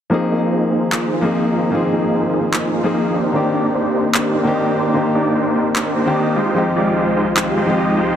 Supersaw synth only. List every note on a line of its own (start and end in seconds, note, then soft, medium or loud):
0.12 0.22 A#3 medium
0.12 0.22 D#4 medium
0.12 0.22 F4 medium
0.12 0.22 G#4 medium
0.12 0.22 C5 medium
0.32 0.50 A#3 medium
0.32 0.50 D#4 medium
0.32 0.50 F4 medium
0.32 0.50 G#4 medium
0.32 0.50 D#5 medium
0.52 0.70 A#3 medium
0.52 0.70 D#4 medium
0.52 0.70 F4 medium
0.52 0.70 G#4 medium
0.52 0.70 C5 medium
0.72 0.82 A#3 medium
0.72 0.82 D#4 medium
0.72 0.82 F4 medium
0.72 0.82 G#4 medium
0.72 0.82 C5 medium
0.92 1.10 A#3 medium
0.92 1.10 D#4 medium
0.92 1.10 F4 medium
0.92 1.10 G#4 medium
0.92 1.10 C5 loud
1.13 1.30 A#3 medium
1.13 1.31 D#4 medium
1.13 1.30 F4 medium
1.13 1.30 G#4 medium
1.13 1.31 C5 loud
1.33 1.51 A#3 medium
1.33 1.51 D#4 medium
1.33 1.51 F4 medium
1.33 1.51 G#4 medium
1.33 1.51 F5 medium
1.53 1.71 A#3 medium
1.53 1.71 D#4 medium
1.53 1.71 F4 medium
1.53 1.71 G#4 medium
1.53 1.71 C5 medium
1.73 1.83 A#3 medium
1.73 1.83 D#4 medium
1.73 1.83 F4 medium
1.73 1.83 G#4 medium
1.73 1.83 C5 medium
1.93 2.11 A#3 medium
1.93 2.11 D#4 medium
1.93 2.11 F4 medium
1.93 2.11 G#4 medium
1.93 2.11 D#5 medium
2.13 2.31 A#3 medium
2.13 2.31 D#4 medium
2.13 2.31 F4 medium
2.13 2.31 G#4 medium
2.13 2.31 C5 medium
2.33 2.43 A#3 medium
2.33 2.43 D#4 medium
2.33 2.43 F4 medium
2.33 2.43 G#4 medium
2.33 2.43 C5 medium
2.54 2.71 A#3 medium
2.54 2.71 D#4 medium
2.54 2.71 F4 medium
2.54 2.71 G#4 medium
2.54 2.71 C5 medium
2.74 2.92 A#3 medium
2.74 2.92 D#4 medium
2.74 2.92 F4 medium
2.74 2.92 G#4 medium
2.74 2.92 C5 loud
2.94 3.12 A#3 medium
2.94 3.12 D#4 medium
2.94 3.12 F4 medium
2.94 3.12 G#4 medium
2.94 3.12 F5 medium
3.14 3.32 A#3 medium
3.14 3.32 D4 medium
3.14 3.32 D#4 medium
3.14 3.32 G4 medium
3.14 3.32 C5 medium
3.34 3.44 A#3 medium
3.34 3.44 D4 medium
3.34 3.44 D#4 medium
3.34 3.44 G4 medium
3.34 3.44 C5 medium
3.54 3.72 A#3 medium
3.54 3.72 D4 medium
3.54 3.72 D#4 medium
3.54 3.72 G4 medium
3.54 3.72 D5 medium
3.74 3.92 A#3 medium
3.74 3.92 D4 medium
3.74 3.92 D#4 medium
3.74 3.92 G4 medium
3.74 3.92 C5 medium
3.94 4.04 A#3 medium
3.94 4.04 D4 medium
3.94 4.04 D#4 medium
3.94 4.04 G4 medium
3.94 4.04 C5 medium
4.15 4.33 A#3 medium
4.15 4.33 D4 medium
4.15 4.33 D#4 medium
4.15 4.32 G4 medium
4.15 4.33 C5 loud
4.35 4.53 A#3 medium
4.35 4.53 D4 medium
4.35 4.53 D#4 medium
4.35 4.53 G4 medium
4.35 4.53 C5 loud
4.55 4.73 A#3 medium
4.55 4.73 D4 medium
4.55 4.73 D#4 medium
4.55 4.73 G4 medium
4.55 4.73 D#5 medium
4.75 4.93 A#3 medium
4.75 4.93 D4 medium
4.75 4.93 D#4 medium
4.75 4.93 G4 medium
4.75 4.93 C5 medium
4.95 5.05 A#3 medium
4.95 5.05 D4 medium
4.95 5.05 D#4 medium
4.95 5.05 G4 medium
4.95 5.05 C5 medium
5.15 5.33 A#3 medium
5.15 5.33 D4 medium
5.15 5.33 D#4 medium
5.15 5.33 G4 medium
5.15 5.33 D5 medium
5.35 5.53 A#3 medium
5.35 5.53 D4 medium
5.35 5.53 D#4 medium
5.35 5.53 G4 medium
5.35 5.53 C5 medium
5.55 5.65 A#3 medium
5.55 5.65 D4 medium
5.55 5.65 D#4 medium
5.55 5.65 G4 medium
5.55 5.65 C5 medium
5.75 5.94 A#3 medium
5.75 5.93 D4 medium
5.75 5.93 D#4 medium
5.75 5.94 G4 medium
5.75 5.94 C5 loud
5.96 6.14 A#3 medium
5.96 6.14 D4 medium
5.96 6.14 D#4 medium
5.96 6.14 G4 medium
5.96 6.14 C5 loud
6.16 6.34 A#3 medium
6.16 6.34 D4 medium
6.16 6.34 D#4 medium
6.16 6.34 G4 medium
6.16 6.34 D#5 medium
6.36 6.54 G#3 medium
6.36 6.54 D#4 medium
6.36 6.54 F4 medium
6.36 6.54 G4 medium
6.36 6.54 C5 medium
6.56 6.66 G#3 medium
6.56 6.66 D#4 medium
6.56 6.66 F4 medium
6.56 6.66 G4 medium
6.56 6.66 C5 medium
6.76 6.94 G#3 medium
6.76 6.94 D#4 medium
6.76 6.94 F4 medium
6.76 6.94 G4 medium
6.76 6.94 D5 medium
6.96 7.14 G#3 medium
6.96 7.14 D#4 medium
6.96 7.14 F4 medium
6.96 7.14 G4 medium
6.96 7.14 C5 medium
7.17 7.26 G#3 medium
7.17 7.26 D#4 medium
7.17 7.26 F4 medium
7.17 7.26 G4 medium
7.17 7.26 C5 medium
7.37 7.55 G#3 medium
7.37 7.55 D#4 medium
7.37 7.55 F4 medium
7.37 7.55 G4 medium
7.37 7.55 C5 loud
7.57 7.75 G#3 medium
7.57 7.75 D#4 medium
7.57 7.75 F4 medium
7.57 7.75 G4 medium
7.57 7.75 C5 loud
7.77 7.95 G#3 medium
7.77 7.95 D#4 medium
7.77 7.95 F4 medium
7.77 7.95 G4 medium
7.77 7.95 D#5 medium
7.97 8.15 G#3 medium
7.97 8.15 D#4 medium
7.97 8.15 F4 medium
7.97 8.15 G4 medium
7.97 8.15 C5 medium